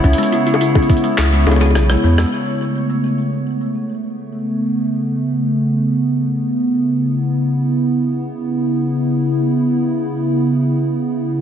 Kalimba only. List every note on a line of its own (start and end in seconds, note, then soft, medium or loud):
0.04 0.15 C#4 loud
0.18 0.29 G#3 loud
0.33 0.40 E4 medium
0.47 0.51 E4 medium
0.61 0.65 E4 medium
0.75 0.80 C#4 medium
1.04 1.11 G#3 medium
1.32 1.40 G#3 medium
1.47 1.54 E4 medium
1.61 1.72 G#4 loud
1.75 1.86 C#5 medium
1.90 1.97 G#3 medium
2.04 2.08 B3 medium
2.18 2.25 G#3 loud